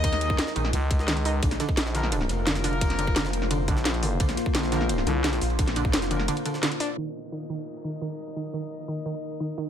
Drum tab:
CC |----------------|----------------|----------------|----------------|
RD |x-x-x-x-x-x-x-x-|x-x-x-x-x-x-x-xx|x-x-x-x-x-x-x-x-|x-x-x-x-x-x-x-xx|
HH |xxx-x-x-x-x-xxo-|xxx-x-x-x-x-xxo-|xxx-x-x-x-x-xxo-|xxx-x-x-x-x-xxo-|
SD |-o--oo-o---oo---|-oo-oooo-oo-ooo-|-o--oo-o---oo---|-oo-oooo-oo-ooo-|
BD |o--o------o-----|o--o------------|o--o------o-----|o--o------------|

CC |----------------|x---------------|----------------|
RD |x-x-x-x-x-x-x-x-|----------------|----------------|
HH |xxx-xxx-xxx-xxo-|--------------o-|--------------o-|
SD |-o--oo-o---oo---|----------------|----------------|
BD |o--o------------|----------------|----------------|